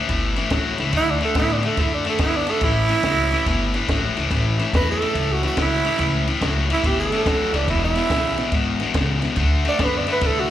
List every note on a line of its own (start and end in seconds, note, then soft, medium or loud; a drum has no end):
0.09 0.37 G1 medium
0.09 0.34 A2 medium
0.09 0.35 E3 medium
0.09 kick medium
0.09 snare soft
0.09 ride medium
0.36 0.50 A2 medium
0.36 0.50 E3 medium
0.36 snare soft
0.36 ride medium
0.50 0.70 A1 medium
0.50 0.77 A2 medium
0.50 0.77 F#3 loud
0.50 kick medium
0.50 snare loud
0.50 ride medium
0.78 0.93 C#2 medium
0.78 0.92 A2 medium
0.78 0.93 E3 medium
0.78 snare soft
0.78 ride medium
0.93 1.22 D2 medium
0.93 1.19 D3 medium
0.93 1.19 A3 medium
0.93 kick medium
0.93 snare soft
0.93 ride medium
0.97 1.12 E4 loud
1.10 1.23 D4 loud
1.21 1.35 D3 medium
1.21 1.35 A3 medium
1.21 snare soft
1.21 ride medium
1.25 1.37 A4 loud
1.35 1.64 A2 medium
1.35 1.61 D3 medium
1.35 1.61 B3 medium
1.35 1.54 E4 loud
1.35 kick medium
1.35 snare loud
1.35 ride medium
1.53 1.68 D4 medium
1.63 1.76 D3 medium
1.63 1.77 A3 medium
1.63 1.83 A4 medium
1.63 snare soft
1.63 ride medium
1.77 2.06 F#2 loud
1.77 2.03 D3 medium
1.77 2.03 A3 loud
1.77 kick medium
1.77 snare soft
1.77 ride medium
1.81 1.94 E4 loud
1.94 2.07 D4 medium
2.05 2.19 D3 medium
2.05 2.19 A3 medium
2.05 snare soft
2.05 ride medium
2.09 2.22 A4 medium
2.19 2.48 F#2 medium
2.19 2.46 D3 medium
2.19 2.46 B3 loud
2.19 kick loud
2.19 snare loud
2.19 ride medium
2.23 2.38 E4 loud
2.36 2.52 D4 loud
2.47 2.61 D3 medium
2.47 2.62 A3 loud
2.47 snare soft
2.47 ride medium
2.51 2.66 A4 medium
2.61 2.90 A1 medium
2.61 2.88 A2 medium
2.61 2.88 E3 medium
2.61 3.87 E4 loud
2.61 kick medium
2.61 snare soft
2.61 ride medium
2.89 3.03 A2 medium
2.89 3.04 E3 medium
2.89 snare soft
2.89 ride medium
3.03 3.32 C#2 loud
3.03 3.30 A2 medium
3.03 3.30 F#3 loud
3.03 kick medium
3.03 snare loud
3.03 ride medium
3.32 3.46 A2 medium
3.32 3.46 E3 medium
3.32 snare soft
3.32 ride medium
3.46 3.75 G1 medium
3.46 3.72 A2 medium
3.46 3.72 E3 medium
3.46 kick medium
3.46 snare soft
3.46 ride medium
3.74 3.88 A2 medium
3.74 3.88 E3 medium
3.74 snare soft
3.74 ride medium
3.88 4.07 A1 loud
3.88 4.15 A2 medium
3.88 4.15 F#3 medium
3.88 kick medium
3.88 snare loud
3.88 ride medium
4.17 4.27 C#2 medium
4.17 4.30 A2 medium
4.17 4.30 E3 medium
4.17 snare soft
4.17 ride medium
4.30 4.59 A1 loud
4.30 4.57 A2 medium
4.30 4.57 E3 medium
4.30 kick medium
4.30 snare soft
4.30 ride medium
4.59 4.72 A2 medium
4.59 4.72 E3 medium
4.59 snare soft
4.59 ride medium
4.73 5.02 E2 loud
4.73 4.99 A2 medium
4.73 4.99 F#3 loud
4.73 4.89 B4 loud
4.73 kick medium
4.73 snare loud
4.73 ride medium
4.91 5.34 A4 medium
5.01 5.14 A2 medium
5.01 5.14 E3 medium
5.01 snare soft
5.01 ride medium
5.15 5.44 C#2 medium
5.15 5.40 A2 medium
5.15 5.41 E3 loud
5.15 kick medium
5.15 snare soft
5.15 ride medium
5.33 5.45 F#4 loud
5.43 5.56 A2 medium
5.43 5.57 E3 medium
5.43 5.59 F#4 medium
5.43 snare soft
5.43 ride medium
5.57 5.86 C#2 medium
5.57 5.83 A2 medium
5.57 5.83 F#3 loud
5.57 kick medium
5.57 snare loud
5.57 ride medium
5.62 6.42 E4 loud
5.85 5.98 A2 medium
5.85 5.99 E3 medium
5.85 snare soft
5.85 ride medium
5.99 6.28 C#2 loud
5.99 6.25 A2 medium
5.99 6.25 E3 medium
5.99 kick medium
5.99 snare soft
5.99 ride medium
6.27 6.40 A2 medium
6.27 6.41 E3 medium
6.27 snare soft
6.27 ride medium
6.41 6.70 C#2 medium
6.41 6.67 A2 medium
6.41 6.67 F#3 medium
6.41 kick medium
6.41 snare loud
6.41 ride medium
6.70 6.83 A2 medium
6.70 6.83 E3 medium
6.70 6.89 E4 medium
6.70 snare soft
6.70 ride medium
6.84 7.12 G1 medium
6.84 7.09 A2 medium
6.84 7.10 E3 loud
6.84 6.99 G4 loud
6.84 kick medium
6.84 snare soft
6.84 ride medium
7.00 7.57 A4 medium
7.12 7.24 A2 medium
7.12 7.26 E3 medium
7.12 snare soft
7.12 ride medium
7.25 7.45 A1 medium
7.25 7.51 A2 medium
7.25 7.52 F#3 medium
7.25 kick medium
7.25 snare loud
7.25 ride medium
7.53 7.63 C#2 medium
7.53 7.67 A2 medium
7.53 7.67 E3 medium
7.53 7.72 D4 medium
7.53 snare soft
7.53 ride medium
7.68 7.97 E1 medium
7.68 7.94 E2 medium
7.68 7.94 B2 loud
7.68 7.83 E4 loud
7.68 kick medium
7.68 snare soft
7.68 ride medium
7.85 8.66 E4 loud
7.95 8.09 E2 medium
7.95 8.10 B2 medium
7.95 snare soft
7.95 ride medium
8.10 8.39 B1 medium
8.10 8.36 E2 loud
8.10 8.36 C#3 loud
8.10 kick medium
8.10 snare loud
8.10 ride medium
8.38 8.51 E2 medium
8.38 8.52 B2 medium
8.38 snare soft
8.38 ride medium
8.52 8.81 G#1 medium
8.52 8.78 E2 medium
8.52 8.78 B2 medium
8.52 kick medium
8.52 snare soft
8.52 ride medium
8.80 8.94 E2 medium
8.80 8.94 B2 medium
8.80 snare soft
8.80 ride medium
8.94 9.23 C#2 medium
8.94 9.21 E2 medium
8.94 9.21 C#3 medium
8.94 kick medium
8.94 snare loud
8.94 ride medium
9.22 9.36 E2 medium
9.22 9.36 B2 medium
9.22 snare soft
9.22 ride medium
9.36 9.66 D2 medium
9.36 9.63 D3 medium
9.36 9.63 A3 medium
9.36 kick medium
9.36 snare soft
9.36 ride medium
9.65 9.78 D3 medium
9.65 9.78 A3 medium
9.65 9.85 D5 loud
9.65 snare soft
9.65 ride medium
9.79 10.08 F#2 loud
9.79 10.05 D3 medium
9.79 10.05 B3 medium
9.79 kick medium
9.79 snare loud
9.79 ride medium
9.84 9.99 B4 loud
9.98 10.10 D5 medium
10.07 10.21 D3 medium
10.07 10.21 A3 medium
10.07 snare soft
10.07 ride medium
10.12 10.28 B4 loud
10.21 10.50 C2 loud
10.21 10.47 D3 medium
10.21 10.48 A3 medium
10.21 kick medium
10.21 snare soft
10.21 ride medium
10.26 10.41 A4 loud
10.40 10.50 F#4 medium